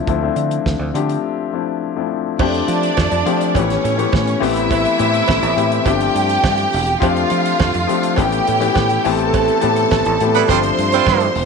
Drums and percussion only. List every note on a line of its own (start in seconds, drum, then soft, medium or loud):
0.07 kick loud
0.07 closed hi-hat medium
0.36 closed hi-hat medium
0.51 closed hi-hat soft
0.66 kick loud
0.66 snare loud
0.95 closed hi-hat medium
1.09 closed hi-hat soft
2.39 kick loud
2.39 crash loud
2.39 cowbell medium
2.54 closed hi-hat soft
2.68 closed hi-hat medium
2.83 closed hi-hat soft
2.97 kick loud
2.97 snare loud
2.97 cowbell medium
3.11 closed hi-hat soft
3.26 closed hi-hat medium
3.41 closed hi-hat soft
3.55 kick loud
3.55 closed hi-hat medium
3.55 cowbell medium
3.70 snare soft
3.70 closed hi-hat soft
3.85 closed hi-hat medium
3.99 closed hi-hat medium
4.12 kick loud
4.12 snare loud
4.12 cowbell medium
4.27 closed hi-hat soft
4.43 open hi-hat medium
4.56 closed hi-hat soft
4.71 kick loud
4.71 closed hi-hat medium
4.71 cowbell medium
4.85 closed hi-hat soft
4.99 closed hi-hat medium
5.14 closed hi-hat soft
5.28 kick loud
5.28 snare loud
5.28 cowbell medium
5.43 closed hi-hat soft
5.58 closed hi-hat medium
5.72 closed hi-hat medium
5.86 kick loud
5.86 closed hi-hat loud
5.86 cowbell medium
6.00 closed hi-hat soft
6.16 closed hi-hat medium
6.29 closed hi-hat medium
6.44 kick loud
6.44 snare loud
6.44 cowbell medium
6.58 closed hi-hat soft
6.73 open hi-hat medium
6.87 closed hi-hat soft
7.02 kick loud
7.02 closed hi-hat medium
7.02 cowbell medium
7.16 closed hi-hat soft
7.30 closed hi-hat medium
7.45 closed hi-hat soft
7.60 kick loud
7.60 snare loud
7.60 cowbell loud
7.74 closed hi-hat soft
7.89 closed hi-hat medium
8.03 closed hi-hat medium
8.16 kick loud
8.16 closed hi-hat loud
8.16 cowbell medium
8.32 closed hi-hat soft
8.47 closed hi-hat medium
8.61 closed hi-hat medium
8.75 kick loud
8.75 snare loud
8.75 cowbell medium
8.89 closed hi-hat soft
9.05 open hi-hat medium
9.18 closed hi-hat soft
9.34 kick loud
9.34 closed hi-hat medium
9.34 cowbell medium
9.48 closed hi-hat soft
9.62 closed hi-hat medium
9.76 closed hi-hat soft
9.91 kick loud
9.91 snare loud
9.91 cowbell medium
10.05 closed hi-hat soft
10.20 closed hi-hat medium
10.34 closed hi-hat medium
10.48 kick loud
10.48 closed hi-hat medium
10.48 cowbell medium
10.63 closed hi-hat medium
10.79 closed hi-hat medium
10.92 closed hi-hat medium
11.06 kick loud
11.06 snare loud
11.06 cowbell medium
11.20 closed hi-hat soft
11.35 open hi-hat medium